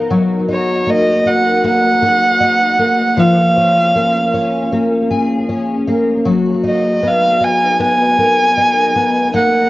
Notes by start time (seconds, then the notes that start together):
Already playing: F3 B3 D#4 A#4
0.10 F#3
0.49 D#4 C#5
0.87 A#3 D#5
1.26 D#4 F#5
1.64 A#3 F#5
2.02 F#4
2.40 D#4
2.79 A#3
3.17 F3 F5
3.57 C#4
3.95 A#3
4.34 C#4
4.72 A#3
5.11 G#4
5.49 C#4
5.88 A#3
6.25 F#3
6.64 D#4
6.68 D#5
7.03 B3
7.07 F5
7.40 D#4 G#5
7.79 B3 G#5
8.18 A#4
8.57 D#4
8.95 B3
9.34 A#3 F#5